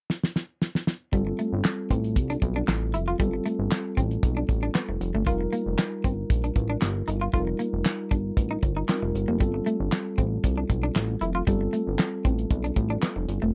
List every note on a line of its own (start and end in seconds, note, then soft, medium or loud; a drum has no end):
0.10 snare medium
0.24 snare medium
0.36 snare medium
0.62 snare medium
0.75 snare medium
0.87 snare medium
1.12 1.33 G1 medium
1.12 3.15 G3 medium
1.12 1.21 G3 medium
1.12 3.16 C4 medium
1.12 3.16 F4 medium
1.12 3.16 A4 medium
1.12 kick loud
1.12 closed hi-hat medium
1.27 muted clean electric guitar stroke soft
1.39 1.47 A3 medium
1.39 closed hi-hat medium
1.53 1.62 G1 loud
1.64 snare loud
1.64 clap loud
1.64 closed hi-hat medium
1.91 2.18 A1 medium
1.91 1.99 C4 medium
1.91 kick medium
1.91 closed hi-hat medium
2.04 closed hi-hat soft
2.16 2.37 C2 medium
2.16 kick loud
2.16 closed hi-hat medium
2.30 2.37 D4 medium
2.30 closed hi-hat medium
2.42 2.63 B1 medium
2.42 muted clean electric guitar stroke soft
2.42 kick medium
2.42 closed hi-hat medium
2.56 2.63 D4 medium
2.68 2.95 A1 medium
2.68 muted clean electric guitar stroke soft
2.68 snare loud
2.68 clap medium
2.68 closed hi-hat medium
2.94 3.15 F1 medium
2.94 3.02 E4 medium
2.94 closed hi-hat medium
3.08 3.15 F4 medium
3.19 3.40 G1 loud
3.19 5.22 G3 medium
3.19 3.28 G3 medium
3.19 3.26 B3 soft
3.19 5.23 F4 medium
3.19 5.23 A4 medium
3.19 kick loud
3.19 closed hi-hat medium
3.25 5.25 C4 medium
3.34 muted clean electric guitar stroke soft
3.46 3.54 A3 medium
3.46 closed hi-hat medium
3.59 3.69 G1 medium
3.71 snare loud
3.71 clap medium
3.71 closed hi-hat medium
3.97 4.18 A1 medium
3.97 4.05 C4 medium
3.97 kick medium
3.97 closed hi-hat medium
4.11 closed hi-hat soft
4.23 4.44 B1 medium
4.23 kick loud
4.23 closed hi-hat medium
4.37 4.44 D4 medium
4.49 4.69 A1 medium
4.49 muted clean electric guitar stroke soft
4.49 kick loud
4.49 closed hi-hat medium
4.63 4.70 D4 medium
4.75 4.83 B3 medium
4.75 snare loud
4.75 clap medium
4.75 closed hi-hat medium
4.89 4.98 F1 medium
4.89 muted clean electric guitar stroke soft
5.01 5.12 F1 medium
5.01 closed hi-hat medium
5.14 5.24 G1 loud
5.14 5.22 A3 medium
5.26 5.47 F1 loud
5.26 7.29 G3 medium
5.26 7.29 D#4 medium
5.26 7.30 F4 medium
5.26 5.35 F4 medium
5.26 7.30 A#4 medium
5.26 kick medium
5.26 closed hi-hat medium
5.41 muted clean electric guitar stroke soft
5.53 5.61 A#3 medium
5.53 closed hi-hat medium
5.66 5.76 F1 medium
5.78 snare loud
5.78 clap loud
5.78 closed hi-hat loud
6.04 6.25 G1 medium
6.04 6.12 C4 medium
6.04 kick medium
6.04 closed hi-hat medium
6.30 6.51 A#1 medium
6.30 kick loud
6.30 closed hi-hat medium
6.44 6.51 D4 medium
6.44 closed hi-hat medium
6.56 6.76 A1 medium
6.56 muted clean electric guitar stroke soft
6.56 kick loud
6.56 closed hi-hat medium
6.70 6.77 D4 medium
6.82 7.02 G1 medium
6.82 muted clean electric guitar stroke soft
6.82 snare loud
6.82 clap medium
6.82 closed hi-hat medium
7.08 7.28 G1 medium
7.08 7.16 D#4 medium
7.08 closed hi-hat medium
7.21 7.29 F4 medium
7.33 7.54 F1 medium
7.33 8.85 G3 medium
7.33 8.85 D#4 medium
7.33 7.42 F4 medium
7.33 8.86 F4 medium
7.33 7.41 A4 medium
7.33 kick loud
7.33 closed hi-hat medium
7.40 8.88 A#4 medium
7.47 muted clean electric guitar stroke soft
7.59 7.67 A#3 medium
7.59 closed hi-hat medium
7.73 7.83 F1 medium
7.85 snare loud
7.85 clap loud
7.85 closed hi-hat medium
8.11 8.32 G1 medium
8.11 8.19 D4 medium
8.11 kick medium
8.11 closed hi-hat medium
8.37 8.58 A1 medium
8.37 kick loud
8.37 closed hi-hat medium
8.51 8.58 D#4 medium
8.63 8.83 G1 medium
8.63 muted clean electric guitar stroke soft
8.63 kick loud
8.63 closed hi-hat medium
8.77 8.84 D#4 medium
8.88 9.38 G3 medium
8.88 8.97 C4 medium
8.88 9.40 D#4 soft
8.88 9.39 F4 medium
8.88 9.41 A#4 medium
8.88 snare loud
8.88 clap medium
8.88 closed hi-hat medium
9.02 9.12 F1 medium
9.02 muted clean electric guitar stroke soft
9.15 9.26 G1 medium
9.15 closed hi-hat medium
9.28 9.42 F1 loud
9.28 9.35 A#3 medium
9.40 9.61 G1 loud
9.40 11.43 G3 medium
9.40 9.48 G3 medium
9.40 11.43 C4 medium
9.40 11.43 F4 medium
9.40 11.44 A4 medium
9.40 kick medium
9.40 closed hi-hat medium
9.54 muted clean electric guitar stroke soft
9.66 9.74 A3 medium
9.66 closed hi-hat medium
9.80 9.90 G1 medium
9.92 snare loud
9.92 clap medium
9.92 closed hi-hat loud
10.18 10.39 A1 medium
10.18 10.26 C4 medium
10.18 kick medium
10.18 closed hi-hat medium
10.44 10.64 C2 medium
10.44 kick loud
10.44 closed hi-hat medium
10.58 10.65 D4 medium
10.70 10.90 B1 medium
10.70 muted clean electric guitar stroke soft
10.70 kick medium
10.70 closed hi-hat medium
10.83 10.91 D4 medium
10.96 11.16 A1 loud
10.96 muted clean electric guitar stroke soft
10.96 snare loud
10.96 clap medium
10.96 closed hi-hat loud
11.21 11.42 F1 medium
11.21 11.29 E4 medium
11.21 closed hi-hat medium
11.35 11.42 F4 medium
11.47 11.68 G1 loud
11.47 13.50 G3 medium
11.47 11.55 G3 medium
11.47 13.50 C4 medium
11.47 13.50 F4 medium
11.47 13.51 A4 medium
11.47 kick medium
11.47 closed hi-hat medium
11.61 muted clean electric guitar stroke soft
11.73 11.81 A3 medium
11.73 closed hi-hat medium
11.87 11.97 G1 medium
11.99 snare loud
11.99 clap loud
11.99 closed hi-hat medium
12.25 12.46 A1 medium
12.25 12.33 C4 medium
12.25 kick medium
12.25 closed hi-hat medium
12.39 closed hi-hat soft
12.50 12.71 B1 loud
12.50 kick loud
12.50 closed hi-hat medium
12.64 12.71 D4 medium
12.64 closed hi-hat medium
12.76 12.97 A1 medium
12.76 muted clean electric guitar stroke soft
12.76 kick loud
12.76 closed hi-hat medium
12.90 12.97 D4 medium
13.02 13.10 B3 medium
13.02 snare loud
13.02 clap medium
13.02 closed hi-hat loud
13.16 13.26 F1 medium
13.16 muted clean electric guitar stroke soft
13.28 13.39 G1 medium
13.28 closed hi-hat medium
13.42 13.52 F1 medium
13.42 13.49 A3 medium